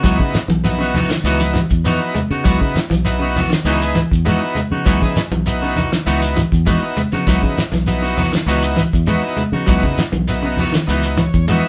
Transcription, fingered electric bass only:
0.04 C#2
0.20 C#3
0.33 muted fingered electric bass stroke
0.48 B1
1.24 C#2
1.71 E2
2.30 C#3
2.45 C#2
2.61 C#3
2.75 muted fingered electric bass stroke
2.90 B1
3.65 C#2
4.12 E2
4.72 C#3
4.86 C#2
5.02 C#3
5.16 muted fingered electric bass stroke
5.31 B1
6.06 C#2
6.52 E2
7.13 C#3
7.28 C#2
7.43 C#3
7.56 muted fingered electric bass stroke
7.72 B1
8.46 C#2
8.93 E2
9.52 C#3
9.68 C#2
9.83 C#3
9.98 muted fingered electric bass stroke
10.12 B1
10.88 C#2
11.34 E2

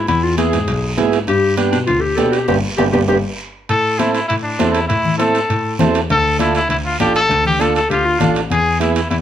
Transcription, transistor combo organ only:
0.38 B3 E4 G#4
0.97 B3 E4 G#4
1.57 B3 D4 G4
2.17 B3 D4 G4
2.48 B3 D4 G4
2.78 B3 D4 G4
2.93 B3 D4 G4
3.08 B3 D4 G4
3.99 C4 E4 A4
4.59 C4 E4 A4
5.19 C4 E4 A4
5.79 C4 E4 A4
6.39 D4 F4 A4
7.00 D4 F4 A4
7.59 D4 F4 A4
8.20 D4 F4 A4
8.80 B3 E4 G#4

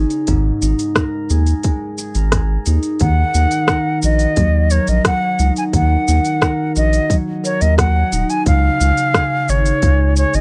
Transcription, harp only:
Already playing: C#3 D#3 G#3 C#4 D#4 G#4
0.28 G#2
0.61 D#4
0.96 A#4
1.30 G#4
1.64 G#3
1.98 G#4
2.16 A#4
2.33 G#4
2.67 D#4
3.01 D#3
3.35 D#4
3.69 A#4
4.03 F#4
4.37 F#3
4.71 A#4
5.05 F#4
5.39 D#4
5.73 D#3
6.07 D#4
6.41 A#4
6.75 F#4
7.10 F#3
7.44 A#4
7.78 F#4
8.12 D#4
8.46 C#3
8.80 C#4
9.14 G#4
9.48 D#4
9.83 G#3
10.17 G#4

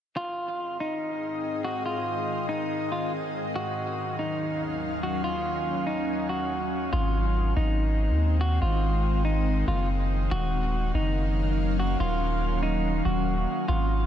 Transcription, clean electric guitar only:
0.17 F4
0.80 D#4
1.65 F#4
1.86 F4
2.49 D#4
2.92 F4
3.56 F#4
4.19 D#4
5.03 F#4
5.24 F4
5.87 D#4
6.29 F#4
6.93 F4
7.57 D#4
8.41 F#4
8.62 F4
9.25 D#4
9.68 F4
10.31 F#4
10.95 D#4
11.80 F#4
12.00 F4
12.63 D#4
13.05 F#4
13.68 F4

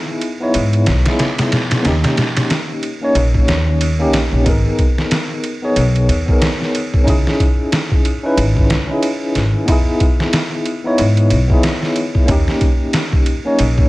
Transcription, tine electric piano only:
Already playing: B3 D#4 E4 G#4
0.40 B3 D#4 E4 C#5
1.03 B3 D#4
1.08 E4 G#4
1.83 A#3 C#4 D#4
1.88 G4
3.02 A#3 C#4 D#4 C#5
3.99 A#3 C#4 D#4 G4
4.43 B3 D#4
4.47 G#4 A#4
5.62 B3 D#4 G#4 C#5
6.26 B3 D#4 G#4
6.31 A#4
7.04 C#4 D#4 E4
7.10 G#4
8.23 C#4 D#4 E4 B4
8.88 C#4 D#4 E4
8.93 G#4
9.66 B3 D#4 E4
9.72 G#4
10.84 B3 D#4 E4 C#5
11.48 B3 D#4 E4
11.53 G#4
12.26 A#3 C#4 D#4
12.31 G4
13.44 A#3 C#4 D#4 C#5

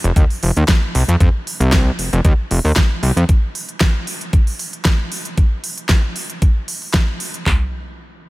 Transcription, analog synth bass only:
0.04 F1
0.16 D#2
0.43 F1
0.57 D#2
0.95 C2
1.08 F2
1.21 F2
1.60 C2
1.99 F1
2.13 F1
2.25 D#2
2.51 F1
2.65 D#2
3.03 C2
3.17 F2

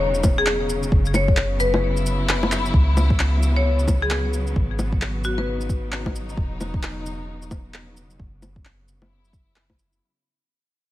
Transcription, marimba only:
Already playing: C#5
0.38 G#4
1.15 C#5
1.60 B4
3.56 C#5
4.02 G#4
5.25 F#4
5.38 B4

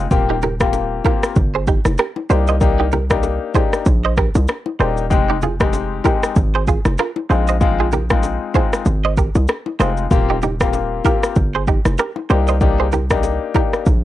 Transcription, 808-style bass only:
0.11 D#1
1.36 G1
1.85 F1
2.30 C2
3.86 A#1
4.35 C2
4.80 D#1
5.11 F1
6.36 G#1
6.85 F1
7.30 A#1
8.86 G#1
9.35 C2
9.80 F1
10.11 D#1
11.36 G1
11.85 F1
12.30 C2
13.86 A#1

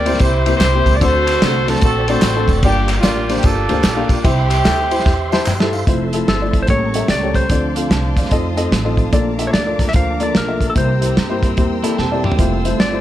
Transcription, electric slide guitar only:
6.29 A4
6.62 C5
6.70 C#5
7.10 D5
7.36 C5
9.47 C#5
9.53 D5
9.89 E5
9.96 F5
10.23 D5
10.37 A#4
10.70 A4
10.78 C5
12.80 D5

